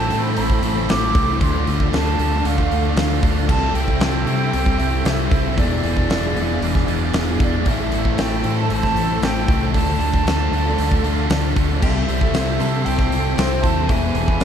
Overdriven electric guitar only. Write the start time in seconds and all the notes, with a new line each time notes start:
Already playing: E3 A3 C4
0.10 A3 C4 E4
0.36 A2 E3 A3 C4 E4
0.63 A3 C4 E4
0.88 E3 A3 C4 E4
1.14 A3 C4 E4
1.40 D3 A3 D4 F4
1.66 A3 D4 F4
1.91 D3 A3 D4 F4
2.18 A3 D4 F4
2.44 D3 A3 D4 F4
2.70 A3 D4 F4
2.96 D3 A3 D4 F4
3.22 A3 D4 F4
3.47 C3 E3 G3 C4 E4
3.74 G3 C4 E4
4.00 E3 G3 C4 E4
4.26 G3 C4 E4
4.52 C3 E3 G3 C4 E4
4.78 G3 C4 E4
5.04 E3 G3 C4 E4
5.30 G3 C4 E4
5.56 E3 B3 D4 G#4
5.83 B3 D4 G#4
6.09 E3 B3 D4 G#4
6.36 B3 D4 G#4
6.62 E3 B3 D4 G#4
6.89 B3 D4 G#4
7.15 E3 B3 D4 G#4
7.41 B3 D4 G#4
7.67 A2 E3 A3 C4 E4 A4
7.93 A3 C4 E4 A4
8.19 A3 C4 E4 A4
8.44 A3 C4 E4 A4
8.70 A2 E3 A3 C4 E4 A4
8.96 A3 C4 E4 A4
9.23 A3 C4 E4 A4
9.48 A3 C4 E4 A4
9.74 D3 A3 D4 F4 A4
10.00 D4 F4 A4
10.26 A3 D4 F4 A4
10.53 D4 F4 A4
10.78 D3 A3 D4 F4 A4
11.04 D4 F4 A4
11.30 A3 D4 F4 A4
11.56 D4 F4 A4
11.82 C3 E3 G3 C4 E4 C5
12.08 G3 C4 E4 C5
12.34 G3 C4 E4 C5
12.59 G3 C4 E4 C5
12.86 C3 E3 G3 C4 E4 C5
13.11 G3 C4 E4 C5
13.37 G3 C4 E4 C5
13.62 G3 C4 E4 C5
13.89 E3 B3 D4 G#4 B4
14.15 D4 G#4 B4
14.41 B3